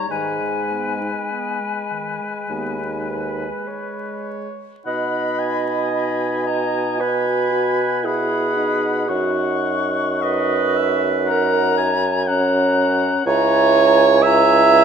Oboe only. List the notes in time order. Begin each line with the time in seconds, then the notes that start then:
Already playing: C#5
0.11 B4
4.86 F#5
5.39 G#5
8.05 F#5
9.09 F#5
10.22 D#5
10.76 E5
11.26 F#5
11.77 G#5
12.27 F#5
13.26 G#5
14.23 G#5